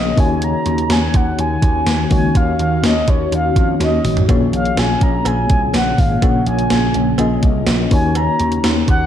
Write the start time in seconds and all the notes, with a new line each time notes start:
Already playing: A#1 A#2 C#3 A#3 C#4 F4 G#4 C#5 D#5
0.16 D#2 D#3 A#3 C#4 D#4 F#4 C#5 G#5, kick, open hi-hat
0.42 A#5, closed hi-hat
0.66 D#2, closed hi-hat
0.78 closed hi-hat
0.90 D#2 G#5, snare, closed hi-hat, tambourine
1.14 D#2 F#5, kick, closed hi-hat
1.38 D#2 G#5, closed hi-hat
1.62 D#2, kick, closed hi-hat
1.86 D#2, snare, closed hi-hat, tambourine
2.10 C#2 D#3 A#3 C#4 D#4 F#4 C#5 G#5, kick, open hi-hat
2.35 D#2 F5, kick, closed hi-hat
2.59 D#2 F5, closed hi-hat
2.83 D#2 D#5, snare, closed hi-hat, tambourine
3.08 D#2 C#5, kick, closed hi-hat
3.32 D#2 F5, closed hi-hat
3.56 F2 F5, kick, closed hi-hat
3.80 D#2 A#3 C#4 D#4 F#4 C#5 D#5, snare, closed hi-hat
4.04 G#1, mid tom, open hi-hat
4.17 closed hi-hat, floor tom
4.27 A#1 A#2 C#3 A#3 C#4 F4 G#4 C#5, kick, closed hi-hat, cowbell
4.53 A#1 F5, closed hi-hat
4.65 closed hi-hat
4.77 A#1 G#5, snare, closed hi-hat, tambourine, cowbell
5.01 A#1 A#5, kick, closed hi-hat
5.25 A#1 G#5, closed hi-hat, cowbell
5.50 C2 G#5, kick, closed hi-hat
5.73 A#1 F#5, snare, closed hi-hat, tambourine, cowbell
5.98 G#1 F5, kick, open hi-hat
6.22 A#1 A#2 A#3 C#4 F4 G#4 A#4 C#5 F#5, kick, closed hi-hat, cowbell
6.46 A#1 G#5, closed hi-hat
6.59 closed hi-hat
6.70 A#1, snare, closed hi-hat, tambourine, cowbell
6.94 A#1, closed hi-hat
7.18 A#1 A#3 C#4 F4 G#4 D#5, closed hi-hat, cowbell
7.43 C2, kick, closed hi-hat
7.67 A#1, snare, closed hi-hat, tambourine, cowbell
7.91 D#2 D#3 A#3 C#4 D#4 F#4 C#5 G#5, kick, open hi-hat
8.15 A#5, closed hi-hat, cowbell
8.40 D#2, closed hi-hat
8.52 closed hi-hat
8.64 D#2, snare, closed hi-hat, tambourine, cowbell
8.88 D#2 F#5, kick, closed hi-hat